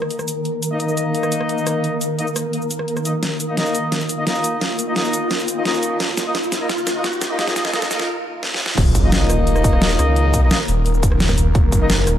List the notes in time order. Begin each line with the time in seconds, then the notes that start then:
Already playing: D#3 A#3 A#4
0.02 cross-stick
0.10 closed hi-hat
0.19 cross-stick, shaker
0.28 closed hi-hat, shaker
0.45 closed hi-hat
0.63 closed hi-hat, shaker
0.71 A#3 D#4 D#5
0.80 A#3 D#4 D#5, closed hi-hat
0.89 shaker
0.97 closed hi-hat, shaker
1.15 closed hi-hat
1.23 cross-stick, shaker
1.32 closed hi-hat, shaker
1.41 cross-stick
1.49 closed hi-hat
1.58 shaker
1.67 cross-stick, closed hi-hat, shaker
1.84 closed hi-hat
2.01 closed hi-hat, shaker
2.19 A#3 D#4 D#5, closed hi-hat
2.27 shaker
2.36 cross-stick, closed hi-hat, shaker
2.53 closed hi-hat
2.62 shaker
2.71 closed hi-hat, shaker
2.79 cross-stick
2.88 closed hi-hat
2.97 cross-stick, shaker
3.05 A#3 D#4 D#5, closed hi-hat, shaker
3.23 F4, snare, closed hi-hat, riser
3.40 closed hi-hat, shaker
3.49 A#3 D#4 D#5
3.57 A#3 D#4 D#5, snare, closed hi-hat
3.66 shaker
3.75 closed hi-hat, shaker
3.92 snare, closed hi-hat
4.01 shaker
4.09 closed hi-hat, shaker
4.18 A#3 D#4 D#5
4.27 A#3 D#4 D#5, snare, closed hi-hat
4.35 shaker
4.44 closed hi-hat, shaker
4.61 snare, closed hi-hat
4.79 closed hi-hat, shaker
4.87 A#3 D#4 D#5
4.96 A#3 D#4 D#5, snare, closed hi-hat
5.05 shaker
5.13 closed hi-hat, shaker
5.31 snare, closed hi-hat
5.39 shaker
5.48 closed hi-hat, shaker
5.57 A#3 D#4 D#5
5.65 A#3 D#4 D#5, snare, closed hi-hat
5.74 shaker
5.83 closed hi-hat, shaker
6.00 snare, closed hi-hat
6.17 snare, closed hi-hat, shaker
6.26 A#3 D#4 D#5
6.35 snare, closed hi-hat
6.43 shaker
6.52 snare, closed hi-hat, shaker
6.61 A#3 D#4 D#5
6.69 snare, closed hi-hat
6.78 shaker
6.87 snare, closed hi-hat, shaker
6.95 A#3 D#4 D#5
7.04 snare, closed hi-hat
7.13 shaker
7.22 snare, closed hi-hat, shaker
7.30 A#3 D#4 D#5
7.39 A#3 D#4 D#5, snare, closed hi-hat
7.47 A#3 D#4 D#5, snare, shaker
7.56 A#3 D#4 D#5, snare, closed hi-hat, shaker
7.65 A#3 D#4 D#5, snare
7.73 A#3 D#4 D#5, snare, closed hi-hat
7.82 A#3 D#4 D#5, snare, shaker
7.91 A#3 D#4 D#5, snare, closed hi-hat, shaker
8.00 A#3 D#4 D#5, snare
8.43 snare
8.54 snare
8.66 snare
8.78 D#1 D#3 A#3 A#4, kick, closed hi-hat, crash, impact
8.95 F#1, kick, closed hi-hat, shaker
9.04 A#3 D#4 D#5
9.12 A#3 D#4 D#5, snare, closed hi-hat
9.30 D#1, cross-stick, closed hi-hat, shaker
9.47 D#1, closed hi-hat
9.56 cross-stick, shaker
9.64 kick, closed hi-hat, shaker
9.73 cross-stick
9.82 snare, closed hi-hat
9.90 shaker
9.99 C#2, cross-stick, closed hi-hat, shaker
10.16 closed hi-hat
10.34 kick, closed hi-hat, shaker
10.42 A#3 D#4 D#5
10.51 A#3 D#4 D#5, snare, closed hi-hat
10.68 D#1, open hi-hat, shaker
10.86 D#1, closed hi-hat
10.94 shaker
11.03 kick, closed hi-hat, shaker
11.12 cross-stick
11.20 snare, closed hi-hat
11.29 kick, cross-stick, shaker
11.38 D#1, closed hi-hat, shaker
11.55 D#1, kick, closed hi-hat
11.72 F#1, kick, closed hi-hat, shaker
11.81 A#3 D#4 D#5
11.90 snare, closed hi-hat
12.07 D#1, cross-stick, closed hi-hat, shaker